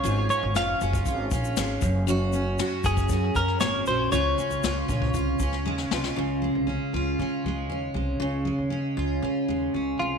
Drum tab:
SH |x-x-x-xxx-xxx-x-|x-x-x-xxx-x-x-x-|x-xxx-x-x-x-----|----------------|
SD |----o-------o---|----o------oo---|----o------o-ooo|----------------|
BD |-------oo-o---o-|------ooo-o-----|------ooo-o-----|----------------|

SH |----------------|
SD |----------------|
BD |----------------|